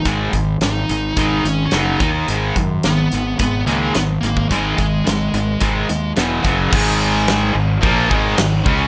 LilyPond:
<<
  \new Staff \with { instrumentName = "Lead electric guitar" } { \time 4/4 \key gis \minor \tempo 4 = 108 r4 dis'4 dis'8 cis'16. cis'32 dis'8 dis'8 | r4 b4 b8 ais8 b8 ais8 | gis2. r4 | r1 | }
  \new Staff \with { instrumentName = "Distorted electric guitar" } { \clef bass \time 4/4 \key gis \minor <gis, dis gis>8 <gis, dis>8 <gis, dis>8 <gis, dis>8 <gis, dis gis>8 <gis, dis>8 <fis, cis fis>8 <dis ais dis'>8 | <gis, dis gis>8 <gis, dis>8 <gis, dis>8 <gis, dis>8 <gis, dis>8 <gis, dis gis>8 <gis, dis>8 <gis, dis>8 | <gis, dis gis>8 <gis, dis>8 <gis, dis>8 <gis, dis>8 <gis, dis gis>8 <gis, dis>8 <e, b, e>8 <fis, cis fis>8 | <gis, dis gis>4. <gis, dis>8 <ais, eis ais>8 <gis, dis gis>8 <gis, dis>8 <cis gis cis'>8 | }
  \new Staff \with { instrumentName = "Overdriven electric guitar" } { \clef bass \time 4/4 \key gis \minor <gis, dis gis>8 <gis, dis>8 <gis, dis>8 <gis, dis>8 <gis, dis gis>8 <gis, dis>8 <fis, cis fis>8 <dis ais dis'>8 | <gis, dis gis>8 <gis, dis>8 <gis, dis>8 <gis, dis>8 <gis, dis>8 <gis, dis gis>8 <gis, dis>8 <gis, dis>8 | <gis, dis gis>8 <gis, dis>8 <gis, dis>8 <gis, dis>8 <gis, dis gis>8 <gis, dis>8 <e, b, e>8 <fis, cis fis>8 | r1 | }
  \new Staff \with { instrumentName = "Overdriven electric guitar" } { \clef bass \time 4/4 \key gis \minor r1 | r1 | r1 | <gis, dis gis>4. <gis, dis>8 <ais, eis ais>8 <gis, dis gis>8 <gis, dis>8 <cis gis cis'>8 | }
  \new Staff \with { instrumentName = "Fingered electric bass" } { \clef bass \time 4/4 \key gis \minor gis,,8 gis,,8 gis,,8 gis,,8 gis,,8 gis,,8 fis,,8 dis,8 | gis,,8 fis,8 gis,,8 gis,,8 gis,,8 cis,8 gis,,8 gis,,8 | gis,,8 gis,,8 gis,,8 gis,,8 gis,,8 dis,8 e,,8 fis,,8 | gis,,4. gis,,8 ais,,8 gis,,8 gis,,8 cis,8 | }
  \new DrumStaff \with { instrumentName = "Drums" } \drummode { \time 4/4 <hh bd>8 <hh bd>8 <hh sn>8 hh8 <hh bd>8 hh8 <hh sn>8 <hh bd>8 | hh8 <hh bd>8 <hh sn>8 hh8 <hh bd>8 hh8 <hh sn>8 hh16 bd16 | <hh bd>8 <hh bd>8 <hh sn>8 hh8 <hh bd>8 hh8 <hh sn>8 <hh bd>8 | <cymc bd>4 <cymc sn>4 <cymc bd>8 bd8 <cymc sn>8 bd8 | }
>>